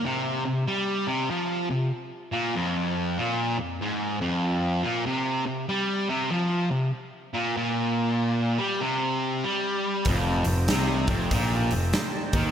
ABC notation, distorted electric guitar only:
X:1
M:4/4
L:1/8
Q:"Swing" 1/4=96
K:F
V:1 name="Distorted electric guitar" clef=bass
C, C, G, C, F, C, z B,, | F,,2 B,, F,, _A,, F,,2 B,, | C, C, G, C, F, C, z B,, | B,,3 G, C,2 G,2 |
F,, F,, C, F,, B,, F,, z _E, |]